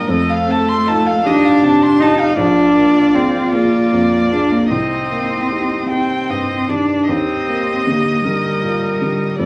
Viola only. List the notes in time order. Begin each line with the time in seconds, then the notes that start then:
Already playing: A#4
0.10 A4
1.26 G4
2.38 F4
4.70 D#4
7.08 G4
8.25 A#4
9.40 A4